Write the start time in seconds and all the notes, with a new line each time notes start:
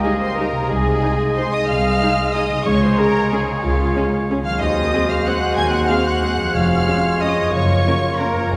Already playing: C#3 A#3 C#4 D#4 G4 D#5
0.03 G3 D#4 G4 G#4 G#5
0.20 C5 C6
0.36 G3 D#4 G4 A#4 A#5
0.51 C3
0.56 G#3
0.61 D#4
0.65 G#4 D#5
0.70 C2 G#3 G#5
1.01 G#3 D#4 G#4
1.35 G#3 D#4 G#4 C5 C6
1.52 D#5 D#6
1.67 C2 F5 F6
2.01 G#3 D#4 G#4
2.33 G#3 D#4 G#4 D#5 D#6
2.48 C#3
2.52 G#3
2.57 C#4
2.61 C#3 G#4 C#5 C#6
2.65 C#2 G#3 G#4 C#5
2.81 C5 C6
2.96 G#3 C#4 G#4 A#4 A#5
3.31 G#3 C#4 G#4 G#5
3.62 C#2 F4 F5
3.95 G#3 C#4 G#4
4.29 G#3 C#4 G#4
4.43 D#3 F5 F6
4.47 F#3
4.52 C4
4.56 G#4 D#5
4.61 D#2 G#3 F#4 C5 D#5 D#6
4.92 G#3 C4 G#4
5.09 F5 F6
5.25 G#3 C4 G#4 F#5 F#6
5.56 D#2 G#5 G#6
5.70 F#5 F#6
5.87 G#3 C4 G#4 F5 F6
5.92 C4
6.05 F#5 F#6
6.22 G#3 C4 G#4
6.36 F2
6.41 F3
6.45 C#4
6.50 G#3 G#4
6.55 F1 F2 F4 C#5 F5 F6
6.87 G#3 C#4 G#4
7.20 G#3 C#4 G#4 D#5 D#6
7.35 F#2
7.40 F3
7.44 C#4
7.49 A#3 A#4 C#6
7.53 F#1 F#2 C#5
7.85 A#3 C#4 F4 A#4
8.19 A#3 C#4 F4 A#4 A#5
8.35 F2
8.39 F3
8.43 C#4
8.48 G#3 G#4 C#5
8.52 F1 F2 F4 G#4 G#5